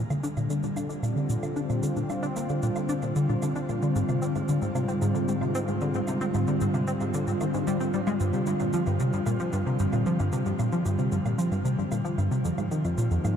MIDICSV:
0, 0, Header, 1, 4, 480
1, 0, Start_track
1, 0, Tempo, 530973
1, 1653, Time_signature, 4, 2, 24, 8
1, 12082, End_track
2, 0, Start_track
2, 0, Title_t, "Analog synth pad"
2, 0, Program_c, 0, 89
2, 0, Note_on_c, 0, 50, 75
2, 0, Note_on_c, 0, 55, 69
2, 0, Note_on_c, 0, 58, 75
2, 449, Note_on_c, 0, 60, 68
2, 513, Note_on_c, 0, 65, 72
2, 735, Note_off_c, 0, 58, 0
2, 3570, Note_on_c, 0, 44, 78
2, 7412, Note_off_c, 0, 44, 0
2, 11251, Note_on_c, 0, 53, 71
2, 11253, Note_off_c, 0, 50, 0
2, 11254, Note_off_c, 0, 55, 0
2, 11521, Note_on_c, 0, 63, 79
2, 11677, Note_on_c, 0, 58, 83
2, 12082, Note_off_c, 0, 53, 0
2, 12082, Note_off_c, 0, 58, 0
2, 12082, Note_off_c, 0, 60, 0
2, 12082, Note_off_c, 0, 63, 0
2, 12082, Note_off_c, 0, 65, 0
2, 12082, End_track
3, 0, Start_track
3, 0, Title_t, "Analog synth bass"
3, 0, Program_c, 1, 38
3, 91, Note_on_c, 1, 50, 77
3, 191, Note_off_c, 1, 50, 0
3, 210, Note_on_c, 1, 62, 81
3, 251, Note_off_c, 1, 62, 0
3, 330, Note_on_c, 1, 46, 74
3, 431, Note_off_c, 1, 46, 0
3, 451, Note_on_c, 1, 50, 78
3, 551, Note_off_c, 1, 50, 0
3, 569, Note_on_c, 1, 46, 76
3, 637, Note_off_c, 1, 46, 0
3, 688, Note_on_c, 1, 50, 84
3, 790, Note_off_c, 1, 50, 0
3, 807, Note_on_c, 1, 62, 70
3, 850, Note_off_c, 1, 62, 0
3, 926, Note_on_c, 1, 46, 73
3, 1029, Note_off_c, 1, 46, 0
3, 1046, Note_on_c, 1, 50, 74
3, 1149, Note_off_c, 1, 50, 0
3, 1169, Note_on_c, 1, 46, 81
3, 1237, Note_off_c, 1, 46, 0
3, 1290, Note_on_c, 1, 50, 75
3, 1391, Note_off_c, 1, 50, 0
3, 1411, Note_on_c, 1, 62, 77
3, 1452, Note_off_c, 1, 62, 0
3, 1530, Note_on_c, 1, 46, 78
3, 1631, Note_off_c, 1, 46, 0
3, 1652, Note_on_c, 1, 50, 78
3, 1752, Note_off_c, 1, 50, 0
3, 1774, Note_on_c, 1, 46, 77
3, 1840, Note_off_c, 1, 46, 0
3, 1895, Note_on_c, 1, 50, 72
3, 1994, Note_off_c, 1, 50, 0
3, 2012, Note_on_c, 1, 62, 81
3, 2052, Note_off_c, 1, 62, 0
3, 2135, Note_on_c, 1, 46, 81
3, 2234, Note_off_c, 1, 46, 0
3, 2256, Note_on_c, 1, 50, 72
3, 2354, Note_off_c, 1, 50, 0
3, 2375, Note_on_c, 1, 46, 72
3, 2440, Note_off_c, 1, 46, 0
3, 2496, Note_on_c, 1, 50, 75
3, 2594, Note_off_c, 1, 50, 0
3, 2612, Note_on_c, 1, 62, 82
3, 2652, Note_off_c, 1, 62, 0
3, 2734, Note_on_c, 1, 46, 74
3, 2833, Note_off_c, 1, 46, 0
3, 2854, Note_on_c, 1, 50, 79
3, 2953, Note_off_c, 1, 50, 0
3, 2975, Note_on_c, 1, 46, 73
3, 3040, Note_off_c, 1, 46, 0
3, 3099, Note_on_c, 1, 50, 80
3, 3195, Note_off_c, 1, 50, 0
3, 3214, Note_on_c, 1, 62, 74
3, 3253, Note_off_c, 1, 62, 0
3, 3335, Note_on_c, 1, 46, 77
3, 3434, Note_off_c, 1, 46, 0
3, 3455, Note_on_c, 1, 50, 78
3, 3554, Note_off_c, 1, 50, 0
3, 3574, Note_on_c, 1, 44, 81
3, 3640, Note_off_c, 1, 44, 0
3, 3695, Note_on_c, 1, 48, 78
3, 3794, Note_off_c, 1, 48, 0
3, 3813, Note_on_c, 1, 60, 71
3, 3852, Note_off_c, 1, 60, 0
3, 3936, Note_on_c, 1, 44, 77
3, 4034, Note_off_c, 1, 44, 0
3, 4054, Note_on_c, 1, 50, 83
3, 4153, Note_off_c, 1, 50, 0
3, 4173, Note_on_c, 1, 44, 75
3, 4239, Note_off_c, 1, 44, 0
3, 4292, Note_on_c, 1, 48, 76
3, 4392, Note_off_c, 1, 48, 0
3, 4414, Note_on_c, 1, 60, 73
3, 4453, Note_off_c, 1, 60, 0
3, 4536, Note_on_c, 1, 44, 84
3, 4634, Note_off_c, 1, 44, 0
3, 4651, Note_on_c, 1, 50, 73
3, 4751, Note_off_c, 1, 50, 0
3, 4775, Note_on_c, 1, 44, 79
3, 4840, Note_off_c, 1, 44, 0
3, 4895, Note_on_c, 1, 48, 78
3, 4994, Note_off_c, 1, 48, 0
3, 5016, Note_on_c, 1, 60, 82
3, 5054, Note_off_c, 1, 60, 0
3, 5136, Note_on_c, 1, 44, 78
3, 5234, Note_off_c, 1, 44, 0
3, 5256, Note_on_c, 1, 50, 75
3, 5354, Note_off_c, 1, 50, 0
3, 5377, Note_on_c, 1, 44, 76
3, 5441, Note_off_c, 1, 44, 0
3, 5498, Note_on_c, 1, 48, 82
3, 5595, Note_off_c, 1, 48, 0
3, 5614, Note_on_c, 1, 60, 79
3, 5653, Note_off_c, 1, 60, 0
3, 5735, Note_on_c, 1, 44, 74
3, 5833, Note_off_c, 1, 44, 0
3, 5856, Note_on_c, 1, 50, 81
3, 5954, Note_off_c, 1, 50, 0
3, 5976, Note_on_c, 1, 44, 84
3, 6041, Note_off_c, 1, 44, 0
3, 6093, Note_on_c, 1, 48, 73
3, 6193, Note_off_c, 1, 48, 0
3, 6215, Note_on_c, 1, 60, 75
3, 6254, Note_off_c, 1, 60, 0
3, 6334, Note_on_c, 1, 44, 75
3, 6433, Note_off_c, 1, 44, 0
3, 6456, Note_on_c, 1, 50, 82
3, 6554, Note_off_c, 1, 50, 0
3, 6572, Note_on_c, 1, 44, 74
3, 6639, Note_off_c, 1, 44, 0
3, 6696, Note_on_c, 1, 51, 77
3, 6734, Note_off_c, 1, 51, 0
3, 6816, Note_on_c, 1, 44, 100
3, 6914, Note_off_c, 1, 44, 0
3, 6935, Note_on_c, 1, 55, 101
3, 7033, Note_off_c, 1, 55, 0
3, 7054, Note_on_c, 1, 60, 74
3, 7153, Note_off_c, 1, 60, 0
3, 7176, Note_on_c, 1, 55, 97
3, 7241, Note_off_c, 1, 55, 0
3, 7294, Note_on_c, 1, 56, 107
3, 7360, Note_off_c, 1, 56, 0
3, 7414, Note_on_c, 1, 43, 80
3, 7513, Note_off_c, 1, 43, 0
3, 7530, Note_on_c, 1, 48, 75
3, 7631, Note_off_c, 1, 48, 0
3, 7653, Note_on_c, 1, 43, 73
3, 7719, Note_off_c, 1, 43, 0
3, 7774, Note_on_c, 1, 46, 81
3, 7873, Note_off_c, 1, 46, 0
3, 7897, Note_on_c, 1, 53, 84
3, 7995, Note_off_c, 1, 53, 0
3, 8016, Note_on_c, 1, 43, 74
3, 8114, Note_off_c, 1, 43, 0
3, 8137, Note_on_c, 1, 48, 77
3, 8235, Note_off_c, 1, 48, 0
3, 8255, Note_on_c, 1, 43, 76
3, 8320, Note_off_c, 1, 43, 0
3, 8374, Note_on_c, 1, 46, 78
3, 8473, Note_off_c, 1, 46, 0
3, 8495, Note_on_c, 1, 53, 72
3, 8593, Note_off_c, 1, 53, 0
3, 8613, Note_on_c, 1, 43, 74
3, 8713, Note_off_c, 1, 43, 0
3, 8736, Note_on_c, 1, 48, 77
3, 8834, Note_off_c, 1, 48, 0
3, 8855, Note_on_c, 1, 43, 80
3, 8920, Note_off_c, 1, 43, 0
3, 8974, Note_on_c, 1, 46, 75
3, 9073, Note_off_c, 1, 46, 0
3, 9096, Note_on_c, 1, 53, 79
3, 9194, Note_off_c, 1, 53, 0
3, 9217, Note_on_c, 1, 43, 76
3, 9314, Note_off_c, 1, 43, 0
3, 9333, Note_on_c, 1, 48, 82
3, 9433, Note_off_c, 1, 48, 0
3, 9453, Note_on_c, 1, 43, 78
3, 9519, Note_off_c, 1, 43, 0
3, 9575, Note_on_c, 1, 46, 74
3, 9673, Note_off_c, 1, 46, 0
3, 9693, Note_on_c, 1, 53, 80
3, 9793, Note_off_c, 1, 53, 0
3, 9812, Note_on_c, 1, 43, 82
3, 9912, Note_off_c, 1, 43, 0
3, 9931, Note_on_c, 1, 48, 74
3, 10031, Note_off_c, 1, 48, 0
3, 10050, Note_on_c, 1, 43, 77
3, 10118, Note_off_c, 1, 43, 0
3, 10171, Note_on_c, 1, 46, 75
3, 10271, Note_off_c, 1, 46, 0
3, 10289, Note_on_c, 1, 53, 83
3, 10390, Note_off_c, 1, 53, 0
3, 10409, Note_on_c, 1, 43, 75
3, 10510, Note_off_c, 1, 43, 0
3, 10528, Note_on_c, 1, 48, 77
3, 10630, Note_off_c, 1, 48, 0
3, 10651, Note_on_c, 1, 43, 80
3, 10718, Note_off_c, 1, 43, 0
3, 10769, Note_on_c, 1, 46, 82
3, 10871, Note_off_c, 1, 46, 0
3, 10888, Note_on_c, 1, 53, 79
3, 10990, Note_off_c, 1, 53, 0
3, 11008, Note_on_c, 1, 43, 76
3, 11110, Note_off_c, 1, 43, 0
3, 11129, Note_on_c, 1, 48, 82
3, 11231, Note_off_c, 1, 48, 0
3, 11252, Note_on_c, 1, 41, 84
3, 11319, Note_off_c, 1, 41, 0
3, 11369, Note_on_c, 1, 44, 79
3, 11471, Note_off_c, 1, 44, 0
3, 11492, Note_on_c, 1, 51, 74
3, 11592, Note_off_c, 1, 51, 0
3, 11610, Note_on_c, 1, 41, 80
3, 11711, Note_off_c, 1, 41, 0
3, 11730, Note_on_c, 1, 46, 86
3, 11831, Note_off_c, 1, 46, 0
3, 11849, Note_on_c, 1, 41, 75
3, 11917, Note_off_c, 1, 41, 0
3, 11971, Note_on_c, 1, 44, 80
3, 12071, Note_off_c, 1, 44, 0
3, 12082, End_track
4, 0, Start_track
4, 0, Title_t, "Drums"
4, 94, Note_on_c, 9, 69, 39
4, 94, Note_on_c, 9, 77, 75
4, 184, Note_off_c, 9, 69, 0
4, 184, Note_off_c, 9, 77, 0
4, 214, Note_on_c, 9, 69, 89
4, 305, Note_off_c, 9, 69, 0
4, 334, Note_on_c, 9, 69, 36
4, 334, Note_on_c, 9, 77, 44
4, 425, Note_off_c, 9, 69, 0
4, 425, Note_off_c, 9, 77, 0
4, 452, Note_on_c, 9, 69, 66
4, 543, Note_off_c, 9, 69, 0
4, 572, Note_on_c, 9, 69, 36
4, 662, Note_off_c, 9, 69, 0
4, 692, Note_on_c, 9, 69, 90
4, 692, Note_on_c, 9, 77, 80
4, 783, Note_off_c, 9, 69, 0
4, 783, Note_off_c, 9, 77, 0
4, 812, Note_on_c, 9, 69, 39
4, 903, Note_off_c, 9, 69, 0
4, 934, Note_on_c, 9, 69, 66
4, 934, Note_on_c, 9, 77, 48
4, 1024, Note_off_c, 9, 69, 0
4, 1024, Note_off_c, 9, 77, 0
4, 1172, Note_on_c, 9, 69, 90
4, 1262, Note_off_c, 9, 69, 0
4, 1293, Note_on_c, 9, 69, 38
4, 1293, Note_on_c, 9, 77, 78
4, 1383, Note_off_c, 9, 69, 0
4, 1383, Note_off_c, 9, 77, 0
4, 1413, Note_on_c, 9, 69, 39
4, 1504, Note_off_c, 9, 69, 0
4, 1535, Note_on_c, 9, 69, 38
4, 1535, Note_on_c, 9, 77, 44
4, 1626, Note_off_c, 9, 69, 0
4, 1626, Note_off_c, 9, 77, 0
4, 1655, Note_on_c, 9, 69, 91
4, 1745, Note_off_c, 9, 69, 0
4, 1777, Note_on_c, 9, 69, 40
4, 1867, Note_off_c, 9, 69, 0
4, 1896, Note_on_c, 9, 69, 65
4, 1896, Note_on_c, 9, 77, 75
4, 1986, Note_off_c, 9, 69, 0
4, 1986, Note_off_c, 9, 77, 0
4, 2016, Note_on_c, 9, 69, 38
4, 2106, Note_off_c, 9, 69, 0
4, 2136, Note_on_c, 9, 69, 90
4, 2136, Note_on_c, 9, 77, 46
4, 2227, Note_off_c, 9, 69, 0
4, 2227, Note_off_c, 9, 77, 0
4, 2254, Note_on_c, 9, 69, 39
4, 2345, Note_off_c, 9, 69, 0
4, 2374, Note_on_c, 9, 69, 64
4, 2465, Note_off_c, 9, 69, 0
4, 2493, Note_on_c, 9, 69, 41
4, 2493, Note_on_c, 9, 77, 76
4, 2583, Note_off_c, 9, 69, 0
4, 2583, Note_off_c, 9, 77, 0
4, 2613, Note_on_c, 9, 69, 93
4, 2703, Note_off_c, 9, 69, 0
4, 2733, Note_on_c, 9, 69, 41
4, 2733, Note_on_c, 9, 77, 48
4, 2823, Note_off_c, 9, 69, 0
4, 2823, Note_off_c, 9, 77, 0
4, 2854, Note_on_c, 9, 69, 69
4, 2945, Note_off_c, 9, 69, 0
4, 3094, Note_on_c, 9, 69, 90
4, 3094, Note_on_c, 9, 77, 75
4, 3185, Note_off_c, 9, 69, 0
4, 3185, Note_off_c, 9, 77, 0
4, 3215, Note_on_c, 9, 69, 37
4, 3306, Note_off_c, 9, 69, 0
4, 3337, Note_on_c, 9, 69, 42
4, 3337, Note_on_c, 9, 77, 46
4, 3427, Note_off_c, 9, 69, 0
4, 3427, Note_off_c, 9, 77, 0
4, 3456, Note_on_c, 9, 69, 41
4, 3546, Note_off_c, 9, 69, 0
4, 3577, Note_on_c, 9, 69, 91
4, 3668, Note_off_c, 9, 69, 0
4, 3695, Note_on_c, 9, 69, 41
4, 3695, Note_on_c, 9, 77, 79
4, 3786, Note_off_c, 9, 69, 0
4, 3786, Note_off_c, 9, 77, 0
4, 3816, Note_on_c, 9, 69, 65
4, 3907, Note_off_c, 9, 69, 0
4, 3937, Note_on_c, 9, 69, 40
4, 3937, Note_on_c, 9, 77, 45
4, 4027, Note_off_c, 9, 69, 0
4, 4027, Note_off_c, 9, 77, 0
4, 4054, Note_on_c, 9, 69, 96
4, 4145, Note_off_c, 9, 69, 0
4, 4176, Note_on_c, 9, 69, 38
4, 4267, Note_off_c, 9, 69, 0
4, 4297, Note_on_c, 9, 69, 68
4, 4297, Note_on_c, 9, 77, 79
4, 4388, Note_off_c, 9, 69, 0
4, 4388, Note_off_c, 9, 77, 0
4, 4417, Note_on_c, 9, 69, 40
4, 4507, Note_off_c, 9, 69, 0
4, 4536, Note_on_c, 9, 69, 93
4, 4536, Note_on_c, 9, 77, 45
4, 4627, Note_off_c, 9, 69, 0
4, 4627, Note_off_c, 9, 77, 0
4, 4657, Note_on_c, 9, 69, 43
4, 4747, Note_off_c, 9, 69, 0
4, 4777, Note_on_c, 9, 69, 69
4, 4867, Note_off_c, 9, 69, 0
4, 4894, Note_on_c, 9, 77, 81
4, 4984, Note_off_c, 9, 77, 0
4, 5016, Note_on_c, 9, 69, 87
4, 5107, Note_off_c, 9, 69, 0
4, 5135, Note_on_c, 9, 69, 38
4, 5135, Note_on_c, 9, 77, 43
4, 5225, Note_off_c, 9, 69, 0
4, 5225, Note_off_c, 9, 77, 0
4, 5252, Note_on_c, 9, 69, 42
4, 5343, Note_off_c, 9, 69, 0
4, 5371, Note_on_c, 9, 69, 40
4, 5461, Note_off_c, 9, 69, 0
4, 5491, Note_on_c, 9, 69, 92
4, 5491, Note_on_c, 9, 77, 75
4, 5582, Note_off_c, 9, 69, 0
4, 5582, Note_off_c, 9, 77, 0
4, 5614, Note_on_c, 9, 69, 39
4, 5704, Note_off_c, 9, 69, 0
4, 5732, Note_on_c, 9, 69, 65
4, 5732, Note_on_c, 9, 77, 41
4, 5822, Note_off_c, 9, 69, 0
4, 5822, Note_off_c, 9, 77, 0
4, 5852, Note_on_c, 9, 69, 40
4, 5942, Note_off_c, 9, 69, 0
4, 5973, Note_on_c, 9, 69, 98
4, 6064, Note_off_c, 9, 69, 0
4, 6094, Note_on_c, 9, 69, 39
4, 6094, Note_on_c, 9, 77, 73
4, 6184, Note_off_c, 9, 69, 0
4, 6184, Note_off_c, 9, 77, 0
4, 6213, Note_on_c, 9, 69, 67
4, 6304, Note_off_c, 9, 69, 0
4, 6333, Note_on_c, 9, 69, 39
4, 6333, Note_on_c, 9, 77, 44
4, 6423, Note_off_c, 9, 69, 0
4, 6423, Note_off_c, 9, 77, 0
4, 6454, Note_on_c, 9, 69, 94
4, 6545, Note_off_c, 9, 69, 0
4, 6575, Note_on_c, 9, 69, 42
4, 6665, Note_off_c, 9, 69, 0
4, 6696, Note_on_c, 9, 69, 67
4, 6696, Note_on_c, 9, 77, 77
4, 6786, Note_off_c, 9, 69, 0
4, 6786, Note_off_c, 9, 77, 0
4, 6816, Note_on_c, 9, 69, 39
4, 6907, Note_off_c, 9, 69, 0
4, 6937, Note_on_c, 9, 69, 95
4, 6937, Note_on_c, 9, 77, 42
4, 7027, Note_off_c, 9, 69, 0
4, 7027, Note_off_c, 9, 77, 0
4, 7056, Note_on_c, 9, 69, 38
4, 7146, Note_off_c, 9, 69, 0
4, 7174, Note_on_c, 9, 69, 41
4, 7265, Note_off_c, 9, 69, 0
4, 7294, Note_on_c, 9, 69, 42
4, 7294, Note_on_c, 9, 77, 75
4, 7384, Note_off_c, 9, 69, 0
4, 7384, Note_off_c, 9, 77, 0
4, 7414, Note_on_c, 9, 69, 91
4, 7414, Note_on_c, 9, 77, 43
4, 7505, Note_off_c, 9, 69, 0
4, 7505, Note_off_c, 9, 77, 0
4, 7533, Note_on_c, 9, 69, 40
4, 7623, Note_off_c, 9, 69, 0
4, 7651, Note_on_c, 9, 69, 66
4, 7742, Note_off_c, 9, 69, 0
4, 7772, Note_on_c, 9, 69, 39
4, 7772, Note_on_c, 9, 77, 73
4, 7862, Note_off_c, 9, 69, 0
4, 7862, Note_off_c, 9, 77, 0
4, 7892, Note_on_c, 9, 69, 89
4, 7983, Note_off_c, 9, 69, 0
4, 8014, Note_on_c, 9, 69, 38
4, 8014, Note_on_c, 9, 77, 41
4, 8104, Note_off_c, 9, 69, 0
4, 8104, Note_off_c, 9, 77, 0
4, 8133, Note_on_c, 9, 69, 64
4, 8223, Note_off_c, 9, 69, 0
4, 8255, Note_on_c, 9, 69, 39
4, 8345, Note_off_c, 9, 69, 0
4, 8373, Note_on_c, 9, 69, 93
4, 8373, Note_on_c, 9, 77, 72
4, 8464, Note_off_c, 9, 69, 0
4, 8464, Note_off_c, 9, 77, 0
4, 8495, Note_on_c, 9, 69, 39
4, 8586, Note_off_c, 9, 69, 0
4, 8613, Note_on_c, 9, 69, 66
4, 8613, Note_on_c, 9, 77, 44
4, 8703, Note_off_c, 9, 69, 0
4, 8703, Note_off_c, 9, 77, 0
4, 8852, Note_on_c, 9, 69, 89
4, 8943, Note_off_c, 9, 69, 0
4, 8974, Note_on_c, 9, 69, 37
4, 8974, Note_on_c, 9, 77, 71
4, 9064, Note_off_c, 9, 69, 0
4, 9064, Note_off_c, 9, 77, 0
4, 9095, Note_on_c, 9, 69, 41
4, 9185, Note_off_c, 9, 69, 0
4, 9217, Note_on_c, 9, 69, 38
4, 9217, Note_on_c, 9, 77, 42
4, 9307, Note_off_c, 9, 69, 0
4, 9307, Note_off_c, 9, 77, 0
4, 9333, Note_on_c, 9, 69, 88
4, 9424, Note_off_c, 9, 69, 0
4, 9454, Note_on_c, 9, 69, 37
4, 9545, Note_off_c, 9, 69, 0
4, 9574, Note_on_c, 9, 69, 64
4, 9574, Note_on_c, 9, 77, 72
4, 9664, Note_off_c, 9, 69, 0
4, 9664, Note_off_c, 9, 77, 0
4, 9694, Note_on_c, 9, 69, 38
4, 9784, Note_off_c, 9, 69, 0
4, 9812, Note_on_c, 9, 69, 89
4, 9812, Note_on_c, 9, 77, 41
4, 9903, Note_off_c, 9, 69, 0
4, 9903, Note_off_c, 9, 77, 0
4, 9933, Note_on_c, 9, 69, 38
4, 10024, Note_off_c, 9, 69, 0
4, 10052, Note_on_c, 9, 69, 62
4, 10143, Note_off_c, 9, 69, 0
4, 10176, Note_on_c, 9, 69, 38
4, 10176, Note_on_c, 9, 77, 77
4, 10266, Note_off_c, 9, 69, 0
4, 10266, Note_off_c, 9, 77, 0
4, 10295, Note_on_c, 9, 69, 91
4, 10385, Note_off_c, 9, 69, 0
4, 10415, Note_on_c, 9, 69, 38
4, 10415, Note_on_c, 9, 77, 43
4, 10505, Note_off_c, 9, 69, 0
4, 10505, Note_off_c, 9, 77, 0
4, 10534, Note_on_c, 9, 69, 64
4, 10624, Note_off_c, 9, 69, 0
4, 10771, Note_on_c, 9, 69, 86
4, 10771, Note_on_c, 9, 77, 71
4, 10862, Note_off_c, 9, 69, 0
4, 10862, Note_off_c, 9, 77, 0
4, 10895, Note_on_c, 9, 69, 37
4, 10985, Note_off_c, 9, 69, 0
4, 11015, Note_on_c, 9, 69, 38
4, 11015, Note_on_c, 9, 77, 42
4, 11106, Note_off_c, 9, 69, 0
4, 11106, Note_off_c, 9, 77, 0
4, 11135, Note_on_c, 9, 69, 38
4, 11225, Note_off_c, 9, 69, 0
4, 11253, Note_on_c, 9, 69, 86
4, 11344, Note_off_c, 9, 69, 0
4, 11373, Note_on_c, 9, 69, 38
4, 11373, Note_on_c, 9, 77, 78
4, 11464, Note_off_c, 9, 69, 0
4, 11464, Note_off_c, 9, 77, 0
4, 11494, Note_on_c, 9, 69, 61
4, 11584, Note_off_c, 9, 69, 0
4, 11614, Note_on_c, 9, 69, 36
4, 11614, Note_on_c, 9, 77, 44
4, 11704, Note_off_c, 9, 69, 0
4, 11704, Note_off_c, 9, 77, 0
4, 11733, Note_on_c, 9, 69, 91
4, 11824, Note_off_c, 9, 69, 0
4, 11852, Note_on_c, 9, 69, 37
4, 11943, Note_off_c, 9, 69, 0
4, 11975, Note_on_c, 9, 69, 62
4, 11975, Note_on_c, 9, 77, 80
4, 12065, Note_off_c, 9, 69, 0
4, 12065, Note_off_c, 9, 77, 0
4, 12082, End_track
0, 0, End_of_file